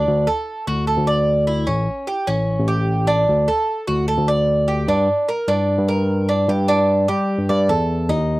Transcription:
Already playing: cuban tres D4
0.07 tine electric piano D2
0.27 cuban tres A4
0.67 tine electric piano D2, cuban tres F#4
0.87 cuban tres A4
0.97 tine electric piano D2
1.07 cuban tres D5
1.47 cuban tres E4
1.67 tine electric piano A1, cuban tres C#4
2.07 cuban tres G4
2.27 tine electric piano A1, cuban tres C#4
2.58 tine electric piano A1
2.68 cuban tres G4
3.07 cuban tres D4
3.28 tine electric piano D2
3.48 cuban tres A4
3.87 tine electric piano D2, cuban tres F#4
4.08 cuban tres A4
4.18 tine electric piano D2
4.28 cuban tres D5
4.68 cuban tres G4
4.88 tine electric piano G2, cuban tres D4
5.29 cuban tres A#4
5.47 tine electric piano G2, cuban tres D4
5.78 tine electric piano G2
5.88 cuban tres A#4
6.29 cuban tres D4
6.48 tine electric piano G2, cuban tres G4
6.68 cuban tres D4
7.08 tine electric piano G3, cuban tres G4
7.39 tine electric piano G2
7.49 tine electric piano G2, cuban tres D5
7.69 tine electric piano E2, cuban tres A4
8.09 tine electric piano D#2, cuban tres D#4

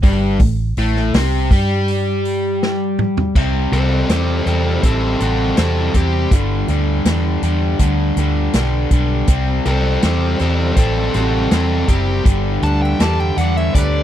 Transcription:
0.03 fingered electric bass G1, overdriven electric guitar G2 G3, kick, open hi-hat
0.39 fingered electric bass A1, overdriven electric guitar A2, kick, open hi-hat
0.77 fingered electric bass A1, overdriven electric guitar A2 A3, open hi-hat
0.96 snare
1.14 fingered electric bass C2, overdriven electric guitar C3 C4, snare, open hi-hat
1.51 fingered electric bass G2, overdriven electric guitar G3 G4, kick, open hi-hat
1.88 open hi-hat
2.25 open hi-hat
2.63 snare
2.99 mid tom
3.17 floor tom
3.35 fingered electric bass C2, overdriven electric guitar C3 G3 C4, kick, crash
3.72 fingered electric bass C2, overdriven electric guitar C3 G3 C4, lead electric guitar A4 C5, koto A4, closed hi-hat
4.09 fingered electric bass E2, overdriven electric guitar C3 G3 C4, koto G4, lead electric guitar A4 C5, snare, closed hi-hat
4.46 fingered electric bass E2, overdriven electric guitar C3 G3 C4, lead electric guitar A4 C5, koto A4, closed hi-hat
4.83 fingered electric bass A1, overdriven electric guitar C3 G3 C4, lead electric guitar C4 A4, koto E4, kick, closed hi-hat
5.20 fingered electric bass A1, overdriven electric guitar C3 G3 C4, lead electric guitar C4 A4, koto F#4, closed hi-hat
5.57 fingered electric bass E2, overdriven electric guitar C3 G3 C4, lead electric guitar C4 A4, snare, closed hi-hat
5.62 koto E4
5.94 fingered electric bass E2, overdriven electric guitar C3 G3 C4, koto E4, lead electric guitar G4, kick, closed hi-hat
6.31 fingered electric bass G1, overdriven electric guitar G2 D3 G3, kick, closed hi-hat
6.68 fingered electric bass D2, overdriven electric guitar G2 D3 G3, closed hi-hat
7.05 fingered electric bass E2, overdriven electric guitar G2 D3 G3, snare, closed hi-hat
7.42 fingered electric bass E2, overdriven electric guitar G2 D3 G3, closed hi-hat
7.79 fingered electric bass D2, overdriven electric guitar G2 D3 G3, kick, closed hi-hat
8.16 fingered electric bass D2, overdriven electric guitar G2 D3 G3, closed hi-hat
8.53 fingered electric bass B1, overdriven electric guitar G2 D3 G3, snare, closed hi-hat
8.91 fingered electric bass B1, overdriven electric guitar G2 D3 G3, kick, closed hi-hat
9.27 fingered electric bass C2, overdriven electric guitar C3 G3 C4, kick, closed hi-hat
9.65 fingered electric bass C2, overdriven electric guitar C3 G3 C4, lead electric guitar A4 C5, koto A4, closed hi-hat
10.02 fingered electric bass E2, overdriven electric guitar C3 G3 C4, koto G4, lead electric guitar A4 C5, snare, closed hi-hat
10.39 fingered electric bass E2, overdriven electric guitar C3 G3 C4, lead electric guitar A4 C5, koto A4, snare, closed hi-hat
10.76 fingered electric bass A1, overdriven electric guitar C3 G3 C4, lead electric guitar C4 A4, koto E4, kick, closed hi-hat
11.14 fingered electric bass A1, overdriven electric guitar C3 G3 C4, lead electric guitar C4 A4, koto F#4, closed hi-hat
11.51 fingered electric bass E2, overdriven electric guitar C3 G3 C4, lead electric guitar C4 A4, koto E4, snare, closed hi-hat
11.88 fingered electric bass F#1, overdriven electric guitar C3 G3 C4, koto E4, lead electric guitar G4, kick, closed hi-hat
12.24 fingered electric bass G1, overdriven electric guitar G2 D3 G3, kick, closed hi-hat
12.62 fingered electric bass D2, overdriven electric guitar G2 D3 G3, lead electric guitar A5, closed hi-hat
12.66 koto F#5
12.82 koto E5, lead electric guitar G5
13.00 fingered electric bass E2, overdriven electric guitar G2 D3 G3, koto D5, lead electric guitar A5, snare, closed hi-hat
13.20 koto E5, lead electric guitar G5
13.37 fingered electric bass E2, overdriven electric guitar G2 D3 G3, koto D5, lead electric guitar F#5, closed hi-hat
13.57 koto C#5, lead electric guitar E5
13.74 fingered electric bass D2, overdriven electric guitar G2 D3 G3, koto B4, lead electric guitar D5, kick, closed hi-hat

